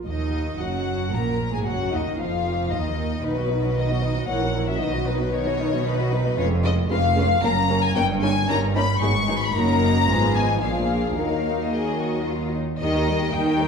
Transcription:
0.06 cello section D#2, double bass section D#2, viola section D#3, violin section D#4 D#5
0.60 double bass section F#1, cello section F#2, viola section F#3, violin section F#4 F#5
1.13 double bass section A#1, cello section A#2, viola section A#3, violin section A#4 A#5
1.53 cello section G#2, viola section G#3, violin section G#4 G#5
1.66 double bass section F#1, cello section F#2, viola section F#3, violin section F#4 F#5
1.92 cello section D#2, double bass section D#2, viola section D#3, violin section D#4 D#5
2.19 double bass section F1, cello section F2, viola section F3, violin section F4 F5
2.71 double bass section D#2, cello section D#2, viola section D#3, violin section D#4 D#5
3.23 double bass section B1, cello section B2, viola section D#3 D#4, violin section D#4 B4
3.36 viola section F#3 B3, violin section F#4 D#5
3.49 viola section D#3 D#4, violin section D#4 B4
3.62 viola section F#3 B3, violin section F#4 D#5
3.76 viola section D#3 D#4, violin section D#4 B4 D#5
3.89 viola section F#3 B3, violin section F#4 D#5
4.02 viola section D#3 D#4, violin section D#4 B4
4.16 viola section F#3 B3, violin section F#4 D#5
4.28 double bass section A#1, cello section A#2, viola section E3 E4, violin section A#4 C#5 F#5
4.42 viola section F#3 C#4, violin section F#4 A#4
4.54 viola section E3 E4, violin section A#4 C#5
4.68 viola section F#3 C#4, violin section F#4 A#4 E5
4.80 double bass section B1, cello section B2, viola section D#3 D#4, violin section D#4 B4 D#5
4.94 viola section F#3 B3, violin section F#4 D#5
5.07 viola section D#3 D#4, violin section D#4 B4
5.20 viola section F#3 B3, violin section F#4 D#5
5.33 viola section D#3 D#4, violin section D#4 B4 C#5
5.46 viola section F#3 B3, violin section F#4 D#5
5.60 viola section D#3 D#4, violin section D#4 B4
5.72 viola section F#3 B3, violin section F#4 D#5
5.86 viola section D#3 D#4, violin section D#4 B4
5.99 viola section F#3 B3, violin section F#4 D#5
6.12 viola section D#3 D#4, violin section D#4 B4
6.25 viola section F#3 B3, violin section F#4 D#5
6.38 double bass section F1, cello section F2, viola section G#3 C#4, violin section F4 B4 C#5
6.64 viola section G#3 C#4, violin section F4 B4 D#5
6.90 double bass section F1, cello section F2, viola section G#3 C#4, violin section F4 B4 F5
7.16 viola section G#3 C#4, violin section F4 B4
7.43 double bass section F#1, cello section F#2, viola section A#3 C#4, violin section C#4 A#4 A#5
7.69 viola section A#3 C#4, violin section C#4 A#4
7.84 violin section G#5
7.96 double bass section G1, cello section G2, viola section A#3 C#4, violin section D#4 A#4 G5
8.23 viola section A#3 C#4, violin section D#4 A#4 G#5
8.48 double bass section G1, cello section G2, viola section A#3 C#4, violin section D#4 A#4 A#5
8.75 viola section A#3 C#4, violin section D#4 A#4 B5
9.01 double bass section G#1, cello section G#2, viola section F#3 B3, violin section D#4 G#4 C#6
9.28 viola section F#3 B3, violin section D#4 G#4
9.42 violin section B5
9.54 double bass section F#1, cello section F#2, viola section F#3 A#3, violin section D#4 A#4 A#5
10.07 double bass section G#1, cello section G#2, viola section F3 B3, violin section F4 G#4
10.35 violin section D#4 G#5
10.61 double bass section A#1, cello section A#2, viola section F3 A#3, violin section D4 G#4 F5
11.16 double bass section D#2, cello section D#3, viola section F#3 A#3, violin section D#4 A#4 F5
11.71 viola section F#3 A#3, violin section G#4 D#5
11.99 violin section F#4
12.26 violin section F4
12.54 violin section D#4
12.81 double bass section D#2, cello section D#3, viola section G3 D#4, violin section A#4 D#5
12.94 viola section A#3 G4, violin section G4 D#5
13.08 viola section G3 D#4, violin section A#4
13.21 viola section A#3 G4, violin section G4 D#5
13.34 double bass section D#2, cello section D#3, viola section G3 D#4, violin section A#4 G5
13.48 viola section A#3 G4, violin section G4 D#5
13.60 viola section G3 D#4, violin section A#4

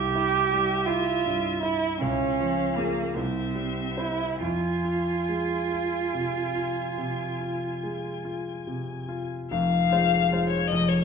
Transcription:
Already playing: grand piano C2, cello G4, violin E5
0.16 grand piano E4
0.53 grand piano G3
0.86 grand piano E4, cello F4
1.26 grand piano G2
1.62 cello E4, grand piano E4
2.00 grand piano C#2, cello C#4, violin F5
2.40 grand piano F3
2.77 cello A#3, grand piano F4 G#4
3.14 grand piano C2, cello C4, violin E5
3.55 grand piano G3
3.97 grand piano E4 C5, cello E4
4.40 grand piano F2, cello F4, violin G#5
4.85 grand piano F4
5.29 grand piano G#3
5.72 grand piano F4
6.13 grand piano C3
6.55 grand piano F4
6.98 grand piano C3
7.41 grand piano F4
7.83 grand piano G#3
8.25 grand piano F4
8.67 grand piano C3
9.09 grand piano F4
9.50 grand piano F1 F2, violin F5
9.92 grand piano G#3 F4 C5
10.32 grand piano G#3 F4 C5
10.49 violin C#5
10.68 violin D#5
10.72 grand piano F1 F2
10.88 violin C#5

